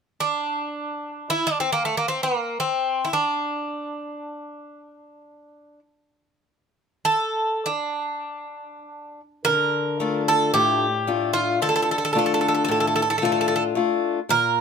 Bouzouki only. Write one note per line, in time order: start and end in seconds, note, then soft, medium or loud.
0.20 1.32 D4 medium
1.30 1.46 E4 medium
1.47 1.60 D4 medium
1.60 1.72 C4 medium
1.73 1.84 A#3 medium
1.85 1.95 A3 medium
1.97 2.08 A#3 medium
2.08 2.22 C4 medium
2.23 2.58 A#3 medium
2.60 3.08 C4 medium
3.05 3.11 E4 medium
3.13 5.79 D4 medium
7.05 7.67 A4 medium
7.66 9.20 D4 medium
9.45 10.22 A#4 medium
10.28 10.53 A4 medium
10.54 11.30 G4 medium
11.33 11.58 F4 medium
11.62 11.68 A4 medium
11.69 11.74 A4 medium
11.76 11.81 A4 medium
11.82 11.90 A4 soft
11.91 11.97 A4 medium
11.98 12.03 A4 soft
12.05 12.12 A4 medium
12.13 12.17 A4 soft
12.19 12.25 A4 medium
12.26 12.33 A4 soft
12.34 12.40 A4 medium
12.41 12.47 A4 soft
12.48 12.53 A4 soft
12.64 12.70 A4 medium
12.71 12.79 A4 soft
12.80 12.86 A4 soft
12.87 12.94 A4 soft
12.96 13.01 A4 medium
13.02 13.09 A4 soft
13.10 13.17 A4 medium
13.18 13.24 A4 soft
13.25 13.31 A4 medium
13.32 13.40 A4 soft
13.41 13.47 A4 medium
13.48 13.54 A4 medium
13.56 13.63 A4 medium
14.30 14.61 A#4 medium